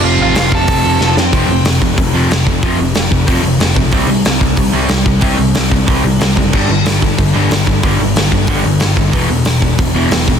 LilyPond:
<<
  \new Staff \with { instrumentName = "Lead electric guitar" } { \time 4/4 \key f \lydian \tempo 4 = 184 <f' f''>8 <f' f''>8 <f' f''>8 <a' a''>2 r8 | r1 | r1 | r1 |
r1 | r1 | r1 | r1 | }
  \new Staff \with { instrumentName = "Distorted electric guitar" } { \clef bass \time 4/4 \key f \lydian <f, c f>2.~ <f, c f>8 r8 | <f, c f>8 <f, c>8 <f, c>8 <f, c>8 <f, c>8 <f, c f>8 <f, c>8 <f, c>8 | <f, c f>8 <f, c>8 <f, c>8 <f, c>8 <f, c f>8 <f, c>8 <f, c>8 <f, c>8 | <c g c'>8 <c g>8 <c g>8 <c g>8 <c g>8 <c g c'>8 <c g>8 <c g>8 |
<c g c'>8 <c g>8 <c g>8 <c g>8 <c g c'>8 <c g>8 <c g>8 <c g>8 | <g, d g>8 <g, d>8 <g, d>8 <g, d>8 <g, d>8 <g, d g>8 <g, d>8 <g, d>8 | <g, d g>8 <g, d>8 <g, d>8 <g, d>8 <g, d g>8 <g, d>8 <g, d>8 <g, d>8 | <e, b, e>8 <e, b,>8 <e, b,>8 <e, b,>8 <e, b,>8 <e, b, e>8 <e, b,>8 <e, b,>8 | }
  \new Staff \with { instrumentName = "Distorted electric guitar" } { \clef bass \time 4/4 \key f \lydian <f, c f>2.~ <f, c f>8 r8 | r1 | r1 | r1 |
r1 | r1 | r1 | r1 | }
  \new Staff \with { instrumentName = "Overdriven electric guitar" } { \clef bass \time 4/4 \key f \lydian <f, c f>4 <f, c f>4. <f, c f>4 r8 | <f, c f>8 <f, c>8 <f, c>8 <f, c>8 <f, c>8 <f, c f>8 <f, c>8 <f, c>8 | <f, c f>8 <f, c>8 <f, c>8 <f, c>8 <f, c f>8 <f, c>8 <f, c>8 <f, c>8 | <c g c'>8 <c g>8 <c g>8 <c g>8 <c g>8 <c g c'>8 <c g>8 <c g>8 |
<c g c'>8 <c g>8 <c g>8 <c g>8 <c g c'>8 <c g>8 <c g>8 <c g>8 | <g, d g>8 <g, d>8 <g, d>8 <g, d>8 <g, d>8 <g, d g>8 <g, d>8 <g, d>8 | <g, d g>8 <g, d>8 <g, d>8 <g, d>8 <g, d g>8 <g, d>8 <g, d>8 <g, d>8 | <e, b, e>8 <e, b,>8 <e, b,>8 <e, b,>8 <e, b,>8 <e, b, e>8 <e, b,>8 <e, b,>8 | }
  \new Staff \with { instrumentName = "Picked electric bass" } { \clef bass \time 4/4 \key f \lydian f,,8 a,,8 f,,8 f,,8 f,,8 f,,8 f,,8 f,8 | f,,8 f,,8 f,,8 f,,8 f,,8 f,,8 f,,8 f,,8 | f,,8 f,,8 f,,8 f,,8 f,,8 f,,8 f,,8 b,,8 | c,8 c,8 c,8 c,8 c,8 c,8 c,8 c,8 |
c,8 c,8 c,8 c,8 c,8 c,8 c,8 fis,,8 | g,,8 g,,8 g,,8 g,,8 g,,8 g,,8 g,,8 g,,8 | g,,8 g,,8 g,,8 g,,8 g,,8 g,,8 g,,8 g,,8 | e,,8 e,,8 e,,8 e,,8 e,,8 e,,8 e,,8 e,,8 | }
  \new DrumStaff \with { instrumentName = "Drums" } \drummode { \time 4/4 r4 <hho sn>8 bd8 <hho bd>4 sn8 sn8 | <hho bd>4 <hho sn>8 bd8 <hho bd>4 <hho sn>8 bd8 | <hho bd>4 <hho sn>8 bd8 <hho bd>4 <hho sn>8 bd8 | <hho bd>4 <hho sn>8 bd8 <hho bd>4 <hho sn>8 bd8 |
<hho bd>4 <hho sn>8 bd8 <hho bd>4 <hho sn>8 bd8 | <cymc bd>4 <hho sn>8 bd8 <hho bd>4 <hho sn>8 bd8 | <hho bd>4 <hho sn>8 bd8 <hho bd>4 <hho sn>8 bd8 | <hho bd>4 <hho sn>8 bd8 <hho bd>4 <hho sn>8 bd8 | }
>>